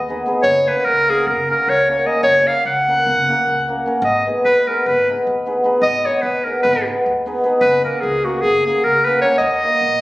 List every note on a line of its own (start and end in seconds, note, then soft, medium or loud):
0.00 0.21 D#2 medium
0.00 0.22 D#5 loud
0.08 0.23 B3 medium
0.08 0.24 D#4 medium
0.08 0.24 G#4 medium
0.08 0.24 B4 medium
0.26 0.40 B3 medium
0.26 0.41 D#4 medium
0.26 0.41 G#4 medium
0.26 0.42 B4 medium
0.43 0.68 F#1 loud
0.43 0.69 C#5 loud
0.66 0.82 A#3 medium
0.66 0.82 C#4 medium
0.66 0.82 F#4 medium
0.66 0.82 A#4 medium
0.66 0.86 B4 medium
0.85 1.28 C#2 medium
0.85 1.11 A#4 loud
1.07 1.23 A#3 medium
1.07 1.23 C#4 medium
1.07 1.24 F#4 medium
1.07 1.29 G#4 medium
1.07 1.24 A#4 medium
1.27 1.52 F#1 medium
1.27 1.50 A#4 medium
1.48 1.64 A#3 medium
1.48 1.64 C#4 medium
1.48 1.65 F#4 soft
1.48 1.65 A#4 medium
1.48 1.71 A#4 medium
1.68 2.01 C#2 medium
1.68 1.89 C#5 loud
1.88 2.03 A#3 medium
1.88 2.03 C#4 medium
1.88 2.04 F#4 medium
1.88 2.04 A#4 medium
1.88 2.08 C#5 medium
2.05 2.20 A#3 medium
2.05 2.21 C#4 medium
2.05 2.21 F#4 medium
2.05 2.21 A#4 medium
2.05 2.23 D#5 medium
2.23 2.48 F#1 loud
2.23 2.49 C#5 loud
2.46 2.62 A#3 medium
2.46 2.62 C#4 medium
2.46 2.62 F#4 medium
2.46 2.63 A#4 medium
2.46 2.65 F5 loud
2.65 3.08 C#2 medium
2.65 3.82 F#5 loud
2.87 3.03 A#3 medium
2.87 3.03 C#4 medium
2.87 3.04 F#4 medium
2.87 3.04 A#4 medium
3.07 3.31 F#1 medium
3.29 3.44 A#3 medium
3.29 3.45 C#4 medium
3.29 3.45 F#4 medium
3.29 3.45 A#4 medium
3.47 3.80 C#2 medium
3.68 3.83 A#3 medium
3.68 3.83 C#4 medium
3.68 3.83 F#4 medium
3.68 3.84 A#4 medium
3.86 4.00 A#3 medium
3.86 4.00 C#4 medium
3.86 4.01 F#4 medium
3.86 4.01 A#4 medium
4.02 4.27 G#1 loud
4.02 4.25 D#5 medium
4.25 4.41 B3 medium
4.25 4.41 D#4 medium
4.25 4.42 G#4 medium
4.25 4.42 B4 medium
4.45 4.88 D#2 medium
4.45 4.69 B4 loud
4.66 4.82 B3 medium
4.66 4.82 D#4 medium
4.66 4.83 G#4 medium
4.66 4.88 A#4 medium
4.66 4.83 B4 medium
4.86 5.11 G#1 medium
4.86 5.10 B4 medium
5.08 5.24 B3 medium
5.08 5.24 D#4 medium
5.08 5.24 G#4 medium
5.08 5.25 B4 medium
5.27 5.60 D#2 medium
5.46 5.61 B3 medium
5.46 5.62 D#4 medium
5.46 5.62 G#4 medium
5.46 5.62 B4 medium
5.64 5.79 B3 medium
5.64 5.79 D#4 medium
5.64 5.80 G#4 medium
5.64 5.80 B4 medium
5.81 6.07 G#1 loud
5.81 6.07 D#5 loud
6.04 6.20 B3 medium
6.04 6.20 D#4 medium
6.04 6.21 G#4 medium
6.04 6.21 B4 medium
6.04 6.23 C#5 medium
6.21 6.66 D#2 medium
6.21 6.46 B4 medium
6.44 6.61 B3 medium
6.44 6.62 D#4 medium
6.44 6.62 G#4 medium
6.44 6.62 A#4 medium
6.44 6.62 B4 medium
6.63 6.89 G#1 loud
6.63 6.86 B4 medium
6.86 7.03 B3 medium
6.86 7.03 D#4 soft
6.86 7.03 G#4 medium
6.86 7.03 B4 medium
7.06 7.39 D#2 medium
7.26 7.41 B3 medium
7.26 7.41 D#4 medium
7.26 7.42 G#4 medium
7.26 7.42 B4 medium
7.44 7.58 B3 medium
7.44 7.59 D#4 medium
7.44 7.59 G#4 medium
7.44 7.59 B4 medium
7.61 7.86 F#1 loud
7.61 7.83 B4 loud
7.83 7.99 A#3 medium
7.83 8.00 C#4 medium
7.83 8.00 F#4 medium
7.83 8.02 A#4 medium
7.83 8.00 A#4 medium
8.01 8.45 C#2 medium
8.01 8.26 G#4 medium
8.24 8.40 A#3 medium
8.24 8.41 C#4 soft
8.24 8.43 F#4 medium
8.24 8.41 F#4 medium
8.24 8.41 A#4 medium
8.41 8.68 F#1 medium
8.41 8.66 G#4 loud
8.66 8.82 A#3 medium
8.66 8.82 C#4 medium
8.66 8.82 F#4 soft
8.66 8.85 G#4 medium
8.66 8.82 A#4 medium
8.84 9.17 C#2 medium
8.84 9.06 A#4 medium
9.05 9.20 A#3 medium
9.05 9.21 C#4 medium
9.05 9.21 F#4 medium
9.05 9.21 A#4 medium
9.05 9.21 B4 medium
9.21 9.37 A#3 medium
9.21 9.38 C#4 medium
9.21 9.38 F#4 medium
9.21 9.37 C#5 medium
9.26 9.39 A#4 medium
9.38 9.64 D#2 loud
9.38 10.01 D#5 loud
9.63 9.78 A#3 medium
9.63 9.78 D#4 medium
9.63 9.79 F#4 medium
9.63 9.79 A#4 medium
9.81 10.01 A#1 medium